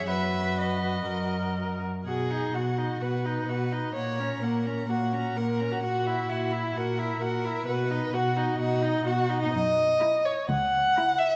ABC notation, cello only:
X:1
M:4/4
L:1/8
Q:1/4=128
K:B
V:1 name="Cello" clef=bass
F,,4 F,,3 z | B,,2 B,,2 B,,2 B,,2 | A,,2 A,,2 A,,2 A,,2 | A,,2 A,,2 A,,2 A,,2 |
B,,2 B,,2 B,,2 B,,2 | F,,2 z2 C,,2 z2 |]